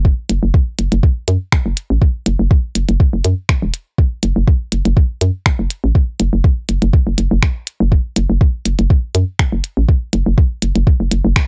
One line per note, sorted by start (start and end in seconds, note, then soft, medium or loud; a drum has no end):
0.00 0.11 F#1 loud
0.05 kick loud
0.29 0.39 F#1 loud
0.29 closed hi-hat medium
0.43 0.51 F#1 medium
0.54 kick loud
0.79 0.88 F#1 medium
0.79 closed hi-hat medium
0.92 1.00 F#1 medium
0.92 closed hi-hat soft
1.03 kick loud
1.28 1.37 F#2 medium
1.28 closed hi-hat medium
1.52 finger snap loud
1.52 kick loud
1.66 1.74 F#1 medium
1.77 closed hi-hat medium
1.90 1.99 A1 medium
2.02 kick loud
2.26 2.36 F#1 loud
2.26 closed hi-hat medium
2.39 2.48 F#1 medium
2.51 kick loud
2.75 2.85 F#1 medium
2.75 closed hi-hat medium
2.89 2.97 F#1 medium
2.89 closed hi-hat soft
3.00 kick loud
3.13 3.22 F#1 medium
3.25 3.34 F#2 medium
3.25 closed hi-hat medium
3.49 finger snap loud
3.49 kick loud
3.62 3.71 E1 loud
3.74 closed hi-hat medium
3.98 kick loud
4.23 4.33 F#1 medium
4.23 closed hi-hat medium
4.36 4.44 F#1 medium
4.48 kick loud
4.72 4.82 F#1 medium
4.72 closed hi-hat medium
4.85 4.94 F#1 medium
4.85 closed hi-hat soft
4.97 kick loud
5.21 5.31 F#2 medium
5.21 closed hi-hat medium
5.46 finger snap loud
5.46 kick loud
5.59 5.67 F#1 medium
5.70 closed hi-hat medium
5.84 5.92 A1 medium
5.95 kick loud
6.20 6.29 F#1 loud
6.20 closed hi-hat medium
6.33 6.41 F#1 medium
6.44 kick loud
6.69 6.78 F#1 medium
6.69 closed hi-hat medium
6.82 6.90 F#1 medium
6.82 closed hi-hat soft
6.93 kick loud
7.07 7.15 F#1 medium
7.18 7.28 F#1 medium
7.18 closed hi-hat medium
7.31 7.39 F#1 loud
7.43 finger snap loud
7.43 kick loud
7.67 closed hi-hat medium
7.80 7.98 F#1 loud
7.92 kick loud
8.16 8.26 F#1 loud
8.16 closed hi-hat medium
8.30 8.38 F#1 medium
8.41 kick loud
8.65 8.75 F#1 medium
8.65 closed hi-hat medium
8.79 8.87 F#1 medium
8.79 closed hi-hat soft
8.90 kick loud
9.15 9.24 F#2 medium
9.15 closed hi-hat medium
9.39 finger snap loud
9.39 kick loud
9.52 9.61 F#1 medium
9.64 closed hi-hat medium
9.77 9.85 A1 medium
9.89 kick loud
10.13 10.23 F#1 loud
10.13 closed hi-hat medium
10.26 10.35 F#1 medium
10.38 kick loud
10.62 10.72 F#1 medium
10.62 closed hi-hat medium
10.76 10.84 F#1 medium
10.76 closed hi-hat soft
10.87 kick loud
11.00 11.08 F#1 medium
11.11 11.21 F#1 medium
11.11 closed hi-hat medium
11.25 11.33 F#1 loud
11.36 finger snap loud
11.36 kick loud